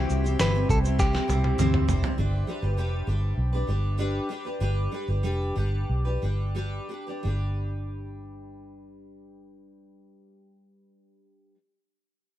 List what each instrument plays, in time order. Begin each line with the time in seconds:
Already playing: steel-string acoustic guitar C3 E3 G3 C4 E4 C5, grand piano C4 E4 F#4 G4, clean electric guitar G4, ambient pad G4 C5 E5 C6
0.10 fingered electric bass C2, shaker
0.24 steel-string acoustic guitar G3 C4 E4 C5, shaker
0.39 fingered electric bass G1, steel-string acoustic guitar C3 E3 G3 C4 E4 C5, clean electric guitar B4, snare, shaker
0.54 steel-string acoustic guitar G3 C4 E4 C5
0.69 fingered electric bass C2, clean electric guitar A4, kick, shaker
0.84 steel-string acoustic guitar G3 C4 E4 C5, shaker
0.99 clean electric guitar G4, kick, snare, shaker
1.13 steel-string acoustic guitar G3 C4 E4 C5, snare
1.28 fingered electric bass C2, steel-string acoustic guitar G3 C4 E4 C5, high tom, shaker
1.44 high tom
1.58 fingered electric bass D2, steel-string acoustic guitar C3 E3 G3 C4 E4 C5, mid tom, shaker
1.74 mid tom
1.88 fingered electric bass F1, steel-string acoustic guitar G3 C4 E4 C5, floor tom, shaker
2.03 steel-string acoustic guitar G3 C4 E4 C5, floor tom
2.18 fingered electric bass G1, steel-string acoustic guitar G3 D4 G4 B4
2.47 steel-string acoustic guitar G3 D4 G4 B4
2.62 fingered electric bass G1, steel-string acoustic guitar D4 G4 B4
2.77 fingered electric bass F1, steel-string acoustic guitar G3 D4 G4 B4
3.07 fingered electric bass G1, steel-string acoustic guitar G3 D4 G4 B4
3.37 fingered electric bass B1
3.53 steel-string acoustic guitar D4 G4 B4
3.67 fingered electric bass G1, steel-string acoustic guitar G3 D4 G4 B4
3.98 steel-string acoustic guitar G3 D4 G4 B4
4.29 steel-string acoustic guitar G3 D4 G4 B4
4.45 steel-string acoustic guitar D4 G4 B4
4.60 fingered electric bass G1, steel-string acoustic guitar G3 D4 G4 B4
4.91 steel-string acoustic guitar G3 D4 G4 B4
5.08 fingered electric bass G1, steel-string acoustic guitar D4 G4 B4
5.23 fingered electric bass F1, steel-string acoustic guitar G3 D4 G4 B4
5.55 fingered electric bass G1, steel-string acoustic guitar G3 D4 G4 B4
5.89 fingered electric bass B1
6.05 steel-string acoustic guitar D4 G4 B4
6.22 fingered electric bass G1, steel-string acoustic guitar G3 D4 G4 B4
6.55 steel-string acoustic guitar G3 D4 G4 B4
6.89 steel-string acoustic guitar G3 D4 G4 B4
7.07 steel-string acoustic guitar D4 G4 B4
7.23 fingered electric bass G1, steel-string acoustic guitar G3 D4 G4
7.28 steel-string acoustic guitar B4